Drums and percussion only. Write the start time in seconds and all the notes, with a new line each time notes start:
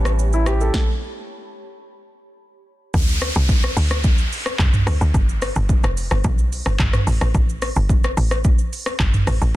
0.05 cross-stick, shaker
0.19 shaker
0.33 shaker
0.46 cross-stick, shaker
0.61 shaker
0.74 kick, snare
2.94 kick, shaker
3.09 shaker
3.21 cross-stick, open hi-hat, shaker
3.35 shaker
3.49 kick, shaker
3.63 cross-stick, shaker
3.77 open hi-hat, shaker
3.91 cross-stick, shaker
4.04 kick, shaker
4.18 shaker
4.33 open hi-hat, shaker
4.46 cross-stick, shaker
4.59 kick, clap, mid tom, shaker
4.73 mid tom, shaker
4.87 cross-stick, open hi-hat, shaker
5.01 shaker
5.14 kick, shaker
5.29 shaker
5.42 cross-stick, open hi-hat, shaker
5.56 shaker
5.69 kick, shaker
5.84 cross-stick, shaker
5.97 open hi-hat, shaker
6.11 cross-stick, shaker
6.24 kick, shaker
6.38 shaker
6.53 open hi-hat, shaker
6.66 cross-stick, shaker
6.79 kick, clap, mid tom, shaker
6.93 cross-stick, mid tom, shaker
7.07 open hi-hat, shaker
7.21 cross-stick, shaker
7.35 kick, shaker
7.49 shaker
7.62 cross-stick, open hi-hat, shaker
7.76 shaker
7.89 kick, shaker
8.04 cross-stick, shaker
8.17 open hi-hat, shaker
8.31 cross-stick, shaker
8.44 kick, shaker
8.58 shaker
8.73 open hi-hat, shaker
8.86 cross-stick, shaker
9.00 kick, clap, mid tom, shaker
9.14 mid tom, shaker
9.27 cross-stick, open hi-hat, shaker
9.42 shaker